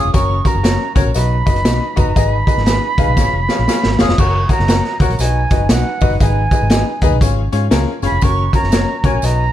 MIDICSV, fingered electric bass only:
0, 0, Header, 1, 2, 480
1, 0, Start_track
1, 0, Key_signature, 6, "major"
1, 0, Tempo, 504626
1, 136, Time_signature, 4, 2, 24, 8
1, 9059, End_track
2, 0, Start_track
2, 0, Title_t, "Fingered electric bass"
2, 0, Program_c, 0, 33
2, 47, Note_on_c, 0, 29, 77
2, 120, Note_off_c, 0, 29, 0
2, 135, Note_on_c, 0, 30, 94
2, 377, Note_off_c, 0, 30, 0
2, 526, Note_on_c, 0, 30, 98
2, 720, Note_off_c, 0, 30, 0
2, 914, Note_on_c, 0, 37, 89
2, 987, Note_off_c, 0, 37, 0
2, 1006, Note_on_c, 0, 34, 88
2, 1079, Note_off_c, 0, 34, 0
2, 1102, Note_on_c, 0, 35, 92
2, 1341, Note_off_c, 0, 35, 0
2, 1396, Note_on_c, 0, 30, 80
2, 1542, Note_off_c, 0, 30, 0
2, 1581, Note_on_c, 0, 35, 88
2, 1700, Note_off_c, 0, 35, 0
2, 1873, Note_on_c, 0, 29, 89
2, 1947, Note_off_c, 0, 29, 0
2, 1975, Note_on_c, 0, 30, 78
2, 2045, Note_off_c, 0, 30, 0
2, 2057, Note_on_c, 0, 32, 91
2, 2298, Note_off_c, 0, 32, 0
2, 2450, Note_on_c, 0, 32, 88
2, 2642, Note_off_c, 0, 32, 0
2, 2834, Note_on_c, 0, 37, 78
2, 2908, Note_off_c, 0, 37, 0
2, 2931, Note_on_c, 0, 35, 83
2, 3002, Note_off_c, 0, 35, 0
2, 3012, Note_on_c, 0, 32, 89
2, 3135, Note_off_c, 0, 32, 0
2, 3170, Note_on_c, 0, 29, 76
2, 3290, Note_off_c, 0, 29, 0
2, 3415, Note_on_c, 0, 34, 76
2, 3485, Note_off_c, 0, 34, 0
2, 3660, Note_on_c, 0, 32, 78
2, 3775, Note_off_c, 0, 32, 0
2, 3807, Note_on_c, 0, 30, 73
2, 3876, Note_off_c, 0, 30, 0
2, 3887, Note_on_c, 0, 29, 74
2, 3960, Note_off_c, 0, 29, 0
2, 3977, Note_on_c, 0, 30, 94
2, 4219, Note_off_c, 0, 30, 0
2, 4372, Note_on_c, 0, 30, 95
2, 4564, Note_off_c, 0, 30, 0
2, 4755, Note_on_c, 0, 37, 87
2, 4829, Note_off_c, 0, 37, 0
2, 4848, Note_on_c, 0, 34, 88
2, 4921, Note_off_c, 0, 34, 0
2, 4939, Note_on_c, 0, 35, 93
2, 5180, Note_off_c, 0, 35, 0
2, 5242, Note_on_c, 0, 30, 77
2, 5386, Note_off_c, 0, 30, 0
2, 5418, Note_on_c, 0, 35, 84
2, 5539, Note_off_c, 0, 35, 0
2, 5719, Note_on_c, 0, 29, 83
2, 5792, Note_off_c, 0, 29, 0
2, 5809, Note_on_c, 0, 30, 81
2, 5882, Note_off_c, 0, 30, 0
2, 5904, Note_on_c, 0, 32, 96
2, 6143, Note_off_c, 0, 32, 0
2, 6298, Note_on_c, 0, 32, 94
2, 6488, Note_off_c, 0, 32, 0
2, 6674, Note_on_c, 0, 39, 91
2, 6749, Note_off_c, 0, 39, 0
2, 6770, Note_on_c, 0, 35, 87
2, 6843, Note_off_c, 0, 35, 0
2, 6862, Note_on_c, 0, 32, 97
2, 7102, Note_off_c, 0, 32, 0
2, 7160, Note_on_c, 0, 44, 86
2, 7305, Note_off_c, 0, 44, 0
2, 7340, Note_on_c, 0, 37, 87
2, 7460, Note_off_c, 0, 37, 0
2, 7633, Note_on_c, 0, 30, 83
2, 7708, Note_off_c, 0, 30, 0
2, 7723, Note_on_c, 0, 29, 78
2, 7798, Note_off_c, 0, 29, 0
2, 7820, Note_on_c, 0, 30, 98
2, 8061, Note_off_c, 0, 30, 0
2, 8212, Note_on_c, 0, 30, 97
2, 8404, Note_off_c, 0, 30, 0
2, 8596, Note_on_c, 0, 37, 86
2, 8670, Note_off_c, 0, 37, 0
2, 8685, Note_on_c, 0, 34, 88
2, 8760, Note_off_c, 0, 34, 0
2, 8779, Note_on_c, 0, 35, 90
2, 9021, Note_off_c, 0, 35, 0
2, 9059, End_track
0, 0, End_of_file